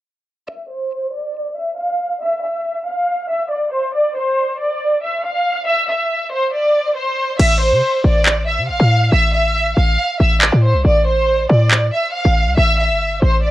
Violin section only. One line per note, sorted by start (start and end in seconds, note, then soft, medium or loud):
0.49 0.65 E5 medium
0.70 1.11 C5 medium
1.13 1.54 D5 medium
1.57 1.73 E5 medium
1.78 2.19 F5 medium
2.22 2.38 E5 loud
2.43 2.84 E5 medium
2.86 3.27 F5 medium
3.29 3.46 E5 medium
3.51 3.67 D5 medium
3.72 3.89 C5 medium
3.94 4.11 D5 medium
4.16 4.56 C5 medium
4.58 4.99 D5 medium
5.03 5.19 E5 medium
5.24 5.64 F5 medium
5.67 5.83 E5 loud
5.88 6.29 E5 medium
6.32 6.48 C5 medium
6.53 6.94 D5 medium
6.96 7.37 C5 medium
7.39 7.56 E5 loud
7.61 8.01 C5 medium
8.04 8.45 D5 medium
8.47 8.64 E5 medium
8.68 9.09 F5 medium
9.12 9.29 E5 loud
9.34 9.74 E5 medium
9.77 10.17 F5 medium
10.20 10.37 E5 medium
10.42 10.58 D5 medium
10.63 10.80 C5 medium
10.85 11.02 D5 medium
11.07 11.47 C5 medium
11.49 11.90 D5 medium
11.93 12.10 E5 medium
12.14 12.55 F5 medium
12.57 12.74 E5 loud
12.79 13.20 E5 medium
13.23 13.39 C5 medium
13.44 13.51 D5 medium